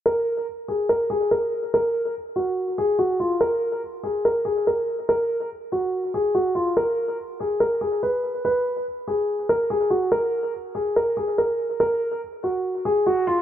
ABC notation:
X:1
M:4/4
L:1/8
Q:1/4=143
K:Bbphr
V:1 name="Grand piano"
B2 z A B A B2 | B2 z G2 A G F | B2 z A B A B2 | B2 z G2 A G F |
B2 z A B A c2 | c2 z A2 B A G | B2 z A B A B2 | B2 z G2 A G F |]